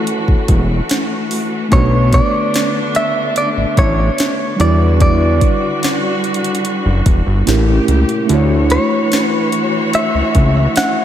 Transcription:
0.00 1.68 E3 medium
0.00 1.66 A3 medium
0.00 4.56 A3 medium
0.00 1.67 C#4 medium
0.00 1.68 E4 medium
0.00 1.68 F#4 medium
0.00 1.69 F#4 medium
0.00 1.27 A4 medium
0.00 1.73 C#5 medium
0.07 closed hi-hat medium
0.28 0.36 E1 soft
0.28 kick medium
0.48 0.81 E1 medium
0.48 kick loud
0.48 closed hi-hat medium
0.89 snare loud
0.89 closed hi-hat medium
1.31 open hi-hat medium
1.69 2.20 B1 loud
1.69 4.56 D3 medium
1.69 4.54 A3 medium
1.69 4.55 B3 medium
1.69 4.57 D4 medium
1.69 4.56 D4 medium
1.69 kick loud
1.69 closed hi-hat medium
1.73 4.57 F#4 medium
1.73 4.58 B4 medium
1.73 2.14 C#5 medium
2.13 2.96 D5 loud
2.13 kick loud
2.13 closed hi-hat medium
2.54 snare loud
2.54 closed hi-hat medium
2.95 3.37 E5 loud
2.95 closed hi-hat medium
3.36 3.49 D5 loud
3.36 closed hi-hat medium
3.57 3.65 A1 medium
3.77 4.10 A1 medium
3.77 4.60 C#5 loud
3.77 kick loud
3.77 closed hi-hat medium
4.18 snare loud
4.18 closed hi-hat medium
4.56 5.41 E2 medium
4.56 7.44 D3 medium
4.56 7.42 G3 medium
4.56 7.44 G3 medium
4.56 7.43 D4 medium
4.56 7.43 E4 medium
4.56 7.44 F#4 medium
4.56 closed hi-hat medium
4.61 7.44 F#4 medium
4.61 7.45 B4 medium
4.61 5.00 D5 loud
5.00 6.20 D5 medium
5.00 kick loud
5.00 closed hi-hat medium
5.41 kick medium
5.41 closed hi-hat medium
5.83 snare loud
5.83 closed hi-hat medium
6.24 closed hi-hat soft
6.34 closed hi-hat medium
6.44 closed hi-hat medium
6.55 closed hi-hat medium
6.65 closed hi-hat medium
6.86 7.02 F#1 medium
7.06 7.22 E1 medium
7.06 kick loud
7.06 closed hi-hat medium
7.27 7.43 G1 medium
7.46 7.80 A1 loud
7.46 8.28 A#2 medium
7.46 8.28 C#3 medium
7.46 8.25 A3 medium
7.46 8.29 C#4 medium
7.46 8.28 E4 medium
7.46 8.29 G4 medium
7.46 8.30 G4 medium
7.46 8.31 A#4 medium
7.46 snare loud
7.46 closed hi-hat medium
7.88 8.04 C#2 medium
7.88 closed hi-hat medium
8.09 closed hi-hat soft
8.26 8.78 D2 loud
8.26 11.05 E3 medium
8.26 11.05 A3 medium
8.26 11.05 D4 medium
8.26 11.05 E4 medium
8.26 11.05 F#4 medium
8.26 11.05 C#5 medium
8.26 closed hi-hat medium
8.32 11.05 F#4 medium
8.32 11.05 C#5 medium
8.70 9.28 C#5 loud
8.70 closed hi-hat medium
9.12 snare loud
9.12 closed hi-hat medium
9.28 9.49 B4 loud
9.52 closed hi-hat medium
9.93 10.73 E5 loud
9.93 closed hi-hat medium
10.14 10.23 C#2 medium
10.35 10.67 C#2 medium
10.35 kick loud
10.35 closed hi-hat medium
10.76 11.05 F#5 loud
10.76 snare loud
10.76 closed hi-hat medium

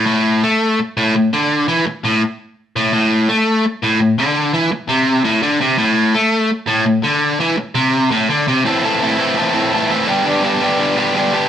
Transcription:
0.06 0.42 A2 loud
0.44 0.79 A3 loud
0.79 muted overdriven electric guitar stroke medium
0.97 1.14 A2 loud
1.16 1.30 A2 medium
1.33 1.68 D3 medium
1.68 1.86 E3 loud
1.87 muted overdriven electric guitar stroke medium
2.05 2.22 A2 loud
2.76 2.92 A2 loud
2.93 3.29 A2 loud
3.29 3.64 A3 loud
3.65 muted overdriven electric guitar stroke medium
3.83 3.99 A2 loud
4.00 4.15 A2 medium
4.18 4.53 D3 loud
4.53 4.71 E3 loud
4.72 muted overdriven electric guitar stroke medium
4.89 5.24 C3 loud
5.24 5.42 A2 loud
5.42 5.60 D3 medium
5.61 5.78 C3 loud
5.78 6.13 A2 loud
6.14 6.50 A3 loud
6.50 muted overdriven electric guitar stroke medium
6.67 6.85 A2 loud
6.86 7.00 A2 medium
7.03 7.39 D3 medium
7.40 7.57 E3 loud
7.58 muted overdriven electric guitar stroke medium
7.75 8.10 C3 loud
8.11 8.28 A2 loud
8.30 8.46 D3 medium
8.48 8.64 C3 loud
8.65 8.81 A2 medium
8.65 8.82 E3 medium
8.65 8.83 C4 loud
8.65 8.84 E4 loud
8.65 8.84 A4 loud
8.83 9.00 A2 medium
8.83 9.02 E3 medium
8.83 9.01 C4 medium
8.83 9.02 E4 medium
8.83 9.03 A4 loud
9.02 9.17 A2 medium
9.02 9.18 E3 medium
9.02 9.19 C4 medium
9.02 9.19 E4 medium
9.02 9.19 A4 medium
9.18 9.35 A2 loud
9.18 9.36 E3 loud
9.18 9.37 C4 medium
9.18 9.37 E4 loud
9.18 9.38 A4 loud
9.36 9.52 A2 medium
9.36 9.53 E3 medium
9.36 9.54 C4 medium
9.36 9.55 E4 medium
9.36 9.55 A4 medium
9.54 9.71 A2 medium
9.54 9.72 E3 medium
9.54 9.72 C4 loud
9.54 9.73 E4 loud
9.54 9.74 A4 medium
9.72 9.88 A2 medium
9.72 9.89 E3 medium
9.72 9.90 C4 medium
9.72 9.90 E4 medium
9.72 9.91 A4 loud
9.90 10.06 A2 medium
9.90 10.07 E3 medium
9.90 10.07 C4 medium
9.90 10.07 E4 medium
9.90 10.07 A4 medium
10.06 10.23 G2 medium
10.06 10.24 D3 medium
10.06 10.25 G3 loud
10.06 10.25 B3 medium
10.06 10.25 D4 loud
10.06 10.26 G4 loud
10.24 10.41 G2 loud
10.24 10.42 D3 loud
10.24 10.43 G3 medium
10.24 10.43 B3 loud
10.24 10.44 D4 loud
10.24 10.44 G4 loud
10.42 10.59 G2 medium
10.42 10.59 D3 medium
10.42 10.60 G3 medium
10.42 10.61 B3 medium
10.42 10.61 D4 medium
10.42 10.62 G4 medium
10.60 10.77 G2 loud
10.60 10.77 D3 medium
10.60 10.78 G3 loud
10.60 10.79 B3 loud
10.60 10.79 D4 loud
10.60 10.80 G4 loud
10.78 10.94 G2 medium
10.78 10.96 D3 medium
10.78 10.96 G3 medium
10.78 10.97 B3 loud
10.78 10.97 D4 medium
10.78 10.98 G4 loud
10.96 11.13 G2 loud
10.96 11.13 D3 medium
10.96 11.15 G3 loud
10.96 11.15 B3 loud
10.96 11.16 D4 loud
10.96 11.16 G4 loud
11.14 11.30 G2 medium
11.14 11.31 D3 medium
11.14 11.32 G3 medium
11.14 11.32 B3 medium
11.14 11.33 D4 medium
11.14 11.34 G4 medium
11.31 11.49 G2 medium
11.31 11.49 D3 medium
11.31 11.49 G3 medium
11.31 11.49 B3 medium
11.31 11.49 D4 medium
11.31 11.49 G4 loud

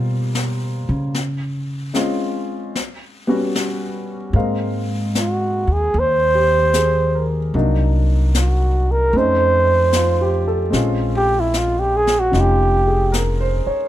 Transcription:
0.00 0.85 B2 medium
0.00 0.30 G3 soft
0.00 0.30 A#3 soft
0.00 0.31 F4 medium
0.00 0.30 C5 soft
0.35 snare medium
0.89 1.91 C#3 medium
1.14 brush sweep soft
1.14 snare soft
1.94 2.74 G#3 soft
1.94 2.74 C4 soft
1.94 2.75 C#4 soft
1.94 2.75 F4 medium
1.94 snare soft
2.75 brush sweep soft
2.75 snare soft
3.27 3.51 G3 soft
3.27 3.52 B3 soft
3.27 3.52 C#4 soft
3.27 3.52 F#4 soft
3.56 snare medium
4.33 5.63 G#2 medium
4.33 7.54 G#3 soft
4.33 7.54 A#3 soft
4.33 7.54 C4 soft
4.33 7.55 F5 soft
4.33 brush sweep soft
5.15 snare soft
5.15 hi-hat pedal soft
5.20 5.74 F#4 medium
5.67 5.92 D#2 medium
5.73 6.01 G#4 medium
5.94 7.50 D#2 medium
5.94 brush sweep soft
5.99 7.30 C5 medium
6.35 6.91 G4 soft
6.74 7.37 G#4 soft
6.74 snare soft
6.74 hi-hat pedal medium
7.15 7.71 A#4 soft
7.54 9.10 C2 medium
7.54 9.14 F#3 soft
7.54 9.14 A#3 soft
7.54 9.14 D4 soft
7.54 9.15 D#4 soft
7.54 brush sweep soft
8.35 snare soft
8.35 hi-hat pedal soft
8.40 8.93 F#4 medium
8.91 9.19 A#4 medium
9.13 10.69 F2 medium
9.13 10.73 A3 soft
9.13 10.70 C4 soft
9.13 10.71 C#4 soft
9.13 brush sweep soft
9.18 10.75 D#4 soft
9.18 10.49 C5 medium
9.93 10.44 F4 soft
9.93 snare soft
9.93 hi-hat pedal soft
10.21 10.62 G4 soft
10.48 10.88 A4 soft
10.70 12.28 A#1 medium
10.70 13.88 G#3 soft
10.70 13.88 C4 soft
10.70 12.30 C#4 soft
10.70 brush sweep soft
10.70 snare soft
10.75 12.34 F4 soft
11.17 11.42 G4 medium
11.40 11.60 E4 medium
11.54 snare soft
11.54 hi-hat pedal soft
11.58 11.81 F4 medium
11.79 11.98 G4 medium
11.97 12.21 G#4 medium
12.07 snare soft
12.20 12.42 F#4 medium
12.31 13.62 F1 medium
12.31 13.88 C#4 soft
12.31 13.88 D#4 soft
12.31 13.88 F4 soft
12.31 brush sweep soft
12.31 snare soft
12.41 13.16 G4 medium
12.87 13.28 G#4 soft
13.12 13.62 A#4 soft
13.12 snare soft
13.12 hi-hat pedal soft
13.40 13.81 C5 soft
13.66 13.88 C#5 soft
13.66 muted upright bass stroke soft

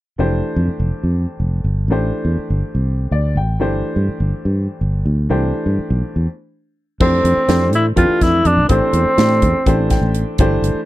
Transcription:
0.18 0.40 F1 medium
0.18 1.86 E3 medium
0.18 1.86 A3 soft
0.18 1.87 D4 soft
0.18 1.87 G4 soft
0.18 1.87 C5 medium
0.56 0.67 F2 medium
0.68 muted fingered electric bass stroke soft
0.80 0.91 F1 medium
1.03 1.25 F2 medium
1.40 1.62 F1 medium
1.64 1.86 G1 medium
1.88 2.10 A1 medium
1.88 3.57 E3 soft
1.88 3.57 A3 soft
1.88 3.58 D4 soft
1.88 3.58 G4 soft
1.88 3.58 C5 medium
2.25 2.36 E2 medium
2.38 muted fingered electric bass stroke soft
2.50 2.61 G1 medium
2.75 3.07 C2 medium
3.11 3.37 D2 medium
3.11 3.35 D5 medium
3.35 3.60 A1 medium
3.35 3.59 G5 medium
3.59 3.81 G1 medium
3.59 5.27 E3 medium
3.59 5.27 A3 soft
3.59 5.27 D4 soft
3.59 5.27 G4 medium
3.59 5.28 C5 medium
3.96 4.07 G2 medium
4.08 muted fingered electric bass stroke soft
4.20 4.31 G1 medium
4.45 4.66 G2 medium
4.81 5.02 G1 medium
5.05 5.27 D2 medium
5.29 5.51 C2 medium
5.29 6.25 E3 medium
5.29 6.25 A3 soft
5.29 6.26 D4 medium
5.29 6.26 G4 medium
5.29 6.26 C5 medium
5.66 5.77 G2 medium
5.79 muted fingered electric bass stroke soft
5.90 6.01 B1 medium
6.16 6.26 E2 medium
7.00 7.21 F2 medium
7.00 7.39 E3 medium
7.00 7.39 A3 medium
7.00 7.69 C4 medium
7.00 7.39 D4 medium
7.00 7.39 G4 medium
7.00 7.40 C5 medium
7.00 kick loud
7.00 crash medium
7.24 7.35 F2 medium
7.24 closed hi-hat medium
7.37 muted fingered electric bass stroke soft
7.48 7.73 F2 medium
7.48 7.85 E3 medium
7.48 7.86 A3 medium
7.48 7.86 D4 medium
7.48 7.86 G4 soft
7.48 7.86 C5 medium
7.48 snare medium
7.48 closed hi-hat medium
7.73 7.94 A2 medium
7.73 7.86 E4 medium
7.73 closed hi-hat medium
7.96 8.07 F2 medium
7.96 8.68 E3 medium
7.96 8.69 A3 soft
7.96 8.69 D4 medium
7.96 8.24 F4 medium
7.96 8.70 G4 medium
7.96 8.70 B4 medium
7.96 kick medium
7.96 closed hi-hat medium
8.09 muted fingered electric bass stroke soft
8.21 8.42 F2 medium
8.21 8.48 E4 medium
8.21 kick medium
8.21 snare soft
8.21 closed hi-hat medium
8.45 8.58 F2 medium
8.45 8.68 D4 medium
8.45 closed hi-hat medium
8.57 8.68 C2 medium
8.68 8.80 A1 medium
8.68 9.08 E3 medium
8.68 9.09 A3 medium
8.68 10.10 C4 medium
8.68 9.09 D4 medium
8.68 9.09 G4 medium
8.68 9.09 C5 medium
8.68 kick medium
8.68 closed hi-hat medium
8.93 9.04 E2 medium
8.93 closed hi-hat medium
9.05 muted fingered electric bass stroke soft
9.17 9.43 A2 medium
9.17 9.55 E3 medium
9.17 9.55 A3 medium
9.17 9.55 D4 medium
9.17 9.55 G4 medium
9.17 9.55 D5 medium
9.17 snare medium
9.17 closed hi-hat medium
9.42 9.52 E2 medium
9.42 kick medium
9.42 closed hi-hat medium
9.66 9.97 A1 medium
9.66 10.37 E3 medium
9.66 10.38 A3 medium
9.66 10.39 D4 medium
9.66 10.39 G4 medium
9.66 10.39 C5 medium
9.66 kick medium
9.66 closed hi-hat medium
9.90 10.36 G5 medium
9.90 kick medium
9.90 snare soft
9.90 closed hi-hat medium
10.01 10.23 A1 medium
10.14 closed hi-hat medium
10.38 10.60 G1 medium
10.38 10.78 E3 medium
10.38 10.78 A3 medium
10.38 10.78 D4 medium
10.38 10.78 G4 medium
10.38 10.78 C5 medium
10.38 kick medium
10.38 closed hi-hat medium
10.62 10.73 G1 medium
10.62 closed hi-hat medium
10.75 muted fingered electric bass stroke soft

